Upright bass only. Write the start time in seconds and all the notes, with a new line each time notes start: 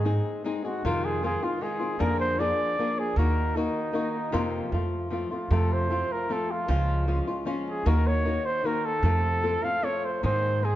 Already playing: G#2
0.85 F2
2.00 F2
3.16 D#2
4.34 F2
4.72 F2
5.51 F2
6.68 C#2
7.86 D#2
9.03 F2
10.24 G#2